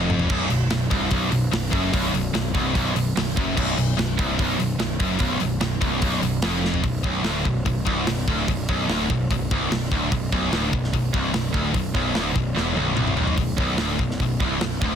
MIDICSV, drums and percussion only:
0, 0, Header, 1, 2, 480
1, 0, Start_track
1, 0, Tempo, 408719
1, 355, Time_signature, 4, 2, 24, 8
1, 17560, End_track
2, 0, Start_track
2, 0, Title_t, "Drums"
2, 118, Note_on_c, 9, 45, 86
2, 228, Note_on_c, 9, 43, 93
2, 235, Note_off_c, 9, 45, 0
2, 345, Note_on_c, 9, 49, 102
2, 346, Note_off_c, 9, 43, 0
2, 352, Note_on_c, 9, 36, 108
2, 462, Note_off_c, 9, 49, 0
2, 469, Note_off_c, 9, 36, 0
2, 589, Note_on_c, 9, 46, 58
2, 707, Note_off_c, 9, 46, 0
2, 827, Note_on_c, 9, 46, 71
2, 830, Note_on_c, 9, 38, 95
2, 944, Note_off_c, 9, 46, 0
2, 948, Note_off_c, 9, 38, 0
2, 1071, Note_on_c, 9, 36, 96
2, 1071, Note_on_c, 9, 46, 51
2, 1188, Note_off_c, 9, 36, 0
2, 1189, Note_off_c, 9, 46, 0
2, 1299, Note_on_c, 9, 46, 73
2, 1308, Note_on_c, 9, 36, 96
2, 1417, Note_off_c, 9, 46, 0
2, 1426, Note_off_c, 9, 36, 0
2, 1547, Note_on_c, 9, 46, 61
2, 1665, Note_off_c, 9, 46, 0
2, 1800, Note_on_c, 9, 46, 88
2, 1803, Note_on_c, 9, 38, 127
2, 1917, Note_off_c, 9, 46, 0
2, 1921, Note_off_c, 9, 38, 0
2, 2032, Note_on_c, 9, 36, 94
2, 2032, Note_on_c, 9, 46, 53
2, 2149, Note_off_c, 9, 36, 0
2, 2149, Note_off_c, 9, 46, 0
2, 2274, Note_on_c, 9, 36, 109
2, 2279, Note_on_c, 9, 46, 96
2, 2391, Note_off_c, 9, 36, 0
2, 2396, Note_off_c, 9, 46, 0
2, 2521, Note_on_c, 9, 46, 58
2, 2639, Note_off_c, 9, 46, 0
2, 2757, Note_on_c, 9, 46, 65
2, 2761, Note_on_c, 9, 38, 89
2, 2874, Note_off_c, 9, 46, 0
2, 2878, Note_off_c, 9, 38, 0
2, 2991, Note_on_c, 9, 36, 101
2, 2993, Note_on_c, 9, 46, 57
2, 3108, Note_off_c, 9, 36, 0
2, 3111, Note_off_c, 9, 46, 0
2, 3232, Note_on_c, 9, 36, 98
2, 3240, Note_on_c, 9, 46, 84
2, 3350, Note_off_c, 9, 36, 0
2, 3357, Note_off_c, 9, 46, 0
2, 3477, Note_on_c, 9, 46, 63
2, 3594, Note_off_c, 9, 46, 0
2, 3724, Note_on_c, 9, 46, 84
2, 3727, Note_on_c, 9, 38, 122
2, 3841, Note_off_c, 9, 46, 0
2, 3845, Note_off_c, 9, 38, 0
2, 3959, Note_on_c, 9, 36, 103
2, 3968, Note_on_c, 9, 46, 56
2, 4077, Note_off_c, 9, 36, 0
2, 4085, Note_off_c, 9, 46, 0
2, 4197, Note_on_c, 9, 36, 103
2, 4203, Note_on_c, 9, 57, 110
2, 4315, Note_off_c, 9, 36, 0
2, 4320, Note_off_c, 9, 57, 0
2, 4441, Note_on_c, 9, 46, 56
2, 4559, Note_off_c, 9, 46, 0
2, 4686, Note_on_c, 9, 46, 65
2, 4689, Note_on_c, 9, 38, 94
2, 4803, Note_off_c, 9, 46, 0
2, 4806, Note_off_c, 9, 38, 0
2, 4920, Note_on_c, 9, 36, 98
2, 4932, Note_on_c, 9, 46, 53
2, 5037, Note_off_c, 9, 36, 0
2, 5049, Note_off_c, 9, 46, 0
2, 5157, Note_on_c, 9, 36, 93
2, 5160, Note_on_c, 9, 46, 74
2, 5275, Note_off_c, 9, 36, 0
2, 5278, Note_off_c, 9, 46, 0
2, 5398, Note_on_c, 9, 46, 58
2, 5516, Note_off_c, 9, 46, 0
2, 5633, Note_on_c, 9, 46, 89
2, 5636, Note_on_c, 9, 38, 124
2, 5750, Note_off_c, 9, 46, 0
2, 5754, Note_off_c, 9, 38, 0
2, 5868, Note_on_c, 9, 46, 61
2, 5873, Note_on_c, 9, 36, 100
2, 5986, Note_off_c, 9, 46, 0
2, 5991, Note_off_c, 9, 36, 0
2, 6094, Note_on_c, 9, 46, 87
2, 6109, Note_on_c, 9, 36, 108
2, 6211, Note_off_c, 9, 46, 0
2, 6227, Note_off_c, 9, 36, 0
2, 6342, Note_on_c, 9, 46, 57
2, 6460, Note_off_c, 9, 46, 0
2, 6586, Note_on_c, 9, 46, 70
2, 6589, Note_on_c, 9, 38, 96
2, 6703, Note_off_c, 9, 46, 0
2, 6707, Note_off_c, 9, 38, 0
2, 6828, Note_on_c, 9, 46, 54
2, 6831, Note_on_c, 9, 36, 94
2, 6945, Note_off_c, 9, 46, 0
2, 6949, Note_off_c, 9, 36, 0
2, 7067, Note_on_c, 9, 46, 87
2, 7072, Note_on_c, 9, 36, 101
2, 7184, Note_off_c, 9, 46, 0
2, 7189, Note_off_c, 9, 36, 0
2, 7315, Note_on_c, 9, 46, 63
2, 7433, Note_off_c, 9, 46, 0
2, 7542, Note_on_c, 9, 46, 90
2, 7545, Note_on_c, 9, 38, 123
2, 7659, Note_off_c, 9, 46, 0
2, 7663, Note_off_c, 9, 38, 0
2, 7806, Note_on_c, 9, 38, 58
2, 7913, Note_on_c, 9, 43, 85
2, 7924, Note_off_c, 9, 38, 0
2, 8027, Note_on_c, 9, 46, 53
2, 8029, Note_on_c, 9, 36, 90
2, 8030, Note_off_c, 9, 43, 0
2, 8145, Note_off_c, 9, 46, 0
2, 8147, Note_off_c, 9, 36, 0
2, 8271, Note_on_c, 9, 36, 104
2, 8388, Note_off_c, 9, 36, 0
2, 8505, Note_on_c, 9, 46, 49
2, 8508, Note_on_c, 9, 38, 85
2, 8622, Note_off_c, 9, 46, 0
2, 8626, Note_off_c, 9, 38, 0
2, 8753, Note_on_c, 9, 36, 81
2, 8871, Note_off_c, 9, 36, 0
2, 8995, Note_on_c, 9, 36, 82
2, 8998, Note_on_c, 9, 46, 49
2, 9113, Note_off_c, 9, 36, 0
2, 9116, Note_off_c, 9, 46, 0
2, 9239, Note_on_c, 9, 36, 96
2, 9356, Note_off_c, 9, 36, 0
2, 9476, Note_on_c, 9, 46, 64
2, 9480, Note_on_c, 9, 38, 121
2, 9594, Note_off_c, 9, 46, 0
2, 9597, Note_off_c, 9, 38, 0
2, 9720, Note_on_c, 9, 36, 93
2, 9837, Note_off_c, 9, 36, 0
2, 9963, Note_on_c, 9, 36, 93
2, 9969, Note_on_c, 9, 46, 67
2, 10080, Note_off_c, 9, 36, 0
2, 10086, Note_off_c, 9, 46, 0
2, 10203, Note_on_c, 9, 36, 92
2, 10320, Note_off_c, 9, 36, 0
2, 10443, Note_on_c, 9, 46, 50
2, 10447, Note_on_c, 9, 38, 93
2, 10561, Note_off_c, 9, 46, 0
2, 10564, Note_off_c, 9, 38, 0
2, 10686, Note_on_c, 9, 36, 84
2, 10804, Note_off_c, 9, 36, 0
2, 10929, Note_on_c, 9, 36, 86
2, 10939, Note_on_c, 9, 46, 51
2, 11046, Note_off_c, 9, 36, 0
2, 11056, Note_off_c, 9, 46, 0
2, 11171, Note_on_c, 9, 36, 102
2, 11288, Note_off_c, 9, 36, 0
2, 11412, Note_on_c, 9, 46, 62
2, 11415, Note_on_c, 9, 38, 122
2, 11529, Note_off_c, 9, 46, 0
2, 11533, Note_off_c, 9, 38, 0
2, 11645, Note_on_c, 9, 36, 90
2, 11763, Note_off_c, 9, 36, 0
2, 11885, Note_on_c, 9, 36, 103
2, 11885, Note_on_c, 9, 46, 54
2, 12002, Note_off_c, 9, 36, 0
2, 12002, Note_off_c, 9, 46, 0
2, 12126, Note_on_c, 9, 36, 95
2, 12243, Note_off_c, 9, 36, 0
2, 12362, Note_on_c, 9, 46, 42
2, 12366, Note_on_c, 9, 38, 94
2, 12480, Note_off_c, 9, 46, 0
2, 12483, Note_off_c, 9, 38, 0
2, 12603, Note_on_c, 9, 36, 84
2, 12721, Note_off_c, 9, 36, 0
2, 12729, Note_on_c, 9, 38, 27
2, 12843, Note_on_c, 9, 36, 79
2, 12846, Note_off_c, 9, 38, 0
2, 12853, Note_on_c, 9, 46, 54
2, 12960, Note_off_c, 9, 36, 0
2, 12970, Note_off_c, 9, 46, 0
2, 13082, Note_on_c, 9, 36, 104
2, 13200, Note_off_c, 9, 36, 0
2, 13316, Note_on_c, 9, 46, 56
2, 13320, Note_on_c, 9, 38, 116
2, 13434, Note_off_c, 9, 46, 0
2, 13437, Note_off_c, 9, 38, 0
2, 13555, Note_on_c, 9, 36, 101
2, 13672, Note_off_c, 9, 36, 0
2, 13792, Note_on_c, 9, 36, 89
2, 13793, Note_on_c, 9, 46, 56
2, 13910, Note_off_c, 9, 36, 0
2, 13911, Note_off_c, 9, 46, 0
2, 14031, Note_on_c, 9, 36, 91
2, 14148, Note_off_c, 9, 36, 0
2, 14268, Note_on_c, 9, 46, 48
2, 14271, Note_on_c, 9, 38, 86
2, 14385, Note_off_c, 9, 46, 0
2, 14389, Note_off_c, 9, 38, 0
2, 14512, Note_on_c, 9, 36, 87
2, 14629, Note_off_c, 9, 36, 0
2, 14764, Note_on_c, 9, 38, 55
2, 14881, Note_off_c, 9, 38, 0
2, 14995, Note_on_c, 9, 48, 69
2, 15113, Note_off_c, 9, 48, 0
2, 15229, Note_on_c, 9, 47, 87
2, 15347, Note_off_c, 9, 47, 0
2, 15354, Note_on_c, 9, 45, 81
2, 15466, Note_on_c, 9, 43, 88
2, 15472, Note_off_c, 9, 45, 0
2, 15583, Note_off_c, 9, 43, 0
2, 15590, Note_on_c, 9, 43, 81
2, 15707, Note_off_c, 9, 43, 0
2, 15709, Note_on_c, 9, 36, 103
2, 15709, Note_on_c, 9, 46, 61
2, 15826, Note_off_c, 9, 36, 0
2, 15827, Note_off_c, 9, 46, 0
2, 15950, Note_on_c, 9, 36, 109
2, 16068, Note_off_c, 9, 36, 0
2, 16180, Note_on_c, 9, 46, 44
2, 16183, Note_on_c, 9, 38, 100
2, 16297, Note_off_c, 9, 46, 0
2, 16301, Note_off_c, 9, 38, 0
2, 16432, Note_on_c, 9, 36, 74
2, 16549, Note_off_c, 9, 36, 0
2, 16566, Note_on_c, 9, 38, 28
2, 16677, Note_on_c, 9, 36, 88
2, 16683, Note_on_c, 9, 46, 49
2, 16684, Note_off_c, 9, 38, 0
2, 16794, Note_off_c, 9, 36, 0
2, 16801, Note_off_c, 9, 46, 0
2, 16916, Note_on_c, 9, 36, 92
2, 17033, Note_off_c, 9, 36, 0
2, 17157, Note_on_c, 9, 46, 57
2, 17160, Note_on_c, 9, 38, 109
2, 17274, Note_off_c, 9, 46, 0
2, 17278, Note_off_c, 9, 38, 0
2, 17400, Note_on_c, 9, 36, 100
2, 17518, Note_off_c, 9, 36, 0
2, 17560, End_track
0, 0, End_of_file